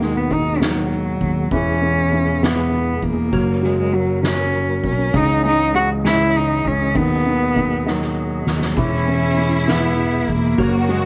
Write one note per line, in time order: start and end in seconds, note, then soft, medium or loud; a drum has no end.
0.00 1.17 D#2 medium
0.00 1.49 B2 medium
0.00 0.31 D#3 medium
0.00 1.49 D#3 medium
0.00 3.29 G#3 medium
0.00 0.18 G#3 medium
0.00 1.49 F#4 medium
0.00 snare soft
0.00 ride soft
0.17 0.34 B3 medium
0.31 0.60 D#3 medium
0.31 0.65 D#4 medium
0.31 kick medium
0.31 ride soft
0.61 1.49 D#3 medium
0.61 1.53 F#3 medium
0.61 snare loud
0.61 ride medium
0.92 ride soft
1.21 1.50 D#2 medium
1.21 kick medium
1.21 ride soft
1.51 2.98 E2 medium
1.51 3.31 B2 medium
1.51 3.31 E3 medium
1.51 1.80 E3 medium
1.51 2.44 C#4 loud
1.51 3.31 G#4 medium
1.51 kick loud
1.51 ride medium
1.81 2.11 E3 medium
1.81 ride soft
2.12 2.41 E3 medium
2.12 ride soft
2.43 3.30 E3 medium
2.43 3.05 B3 medium
2.43 snare loud
2.73 ride soft
3.02 3.31 E2 medium
3.02 3.66 A#3 loud
3.02 kick medium
3.02 ride medium
3.32 4.80 F#1 medium
3.32 3.61 F#3 medium
3.32 5.12 F#3 medium
3.32 5.13 A#3 medium
3.32 5.11 C#4 medium
3.32 5.12 A#4 medium
3.32 kick loud
3.32 ride medium
3.62 3.91 F#3 medium
3.62 3.79 G#3 medium
3.62 snare soft
3.62 ride soft
3.80 3.96 G#3 medium
3.93 4.21 F#3 medium
3.93 4.24 F#3 medium
3.93 ride soft
4.22 5.11 F#3 medium
4.22 4.80 C#4 medium
4.22 snare loud
4.22 ride medium
4.54 ride soft
4.83 5.12 B1 medium
4.83 5.18 C#4 medium
4.83 kick medium
4.83 ride medium
5.12 6.61 C#2 loud
5.12 5.73 C#3 medium
5.12 6.93 E3 medium
5.12 6.93 C#4 medium
5.12 10.54 G#4 medium
5.12 8.73 D#5 medium
5.12 kick loud
5.12 ride medium
5.16 5.45 D#4 loud
5.44 6.03 G#3 medium
5.44 5.73 D#4 loud
5.44 ride soft
5.74 6.92 C#3 medium
5.74 5.89 F#4 medium
5.74 ride soft
6.04 6.92 G#3 medium
6.04 6.38 E4 loud
6.04 snare loud
6.04 ride medium
6.36 6.69 D#4 medium
6.36 ride soft
6.65 6.93 C#2 medium
6.65 6.99 C#4 loud
6.65 kick medium
6.65 ride soft
6.94 8.43 D#2 medium
6.94 10.55 B2 medium
6.94 7.24 D#3 medium
6.94 8.75 F#3 medium
6.94 7.90 B3 loud
6.94 kick loud
6.94 ride medium
7.25 7.54 D#3 medium
7.25 ride soft
7.56 7.84 D#3 medium
7.56 kick medium
7.56 ride soft
7.86 8.74 D#3 medium
7.86 8.80 F#3 medium
7.86 snare medium
8.02 snare medium
8.47 8.75 D#2 medium
8.47 snare medium
8.62 snare medium
8.75 10.24 E1 medium
8.75 10.56 E3 medium
8.75 9.06 E3 medium
8.75 10.56 G#3 medium
8.75 9.70 C#4 medium
8.75 10.54 E4 medium
8.75 kick loud
8.75 crash medium
9.06 9.36 E3 medium
9.06 ride soft
9.37 9.66 E3 medium
9.37 ride soft
9.68 10.56 E3 medium
9.68 10.31 B3 medium
9.68 snare loud
9.99 ride soft
10.28 10.56 E1 medium
10.28 10.91 A#3 loud
10.28 kick medium
10.28 ride medium
10.58 11.05 F#1 medium
10.58 10.87 F#3 medium
10.58 11.05 F#3 medium
10.58 11.05 A#3 medium
10.58 11.05 C#4 medium
10.58 11.05 F#4 medium
10.58 11.05 A#4 medium
10.58 kick loud
10.58 ride medium
10.88 11.05 F#3 medium
10.88 11.04 G#3 medium
10.88 snare soft
10.88 ride soft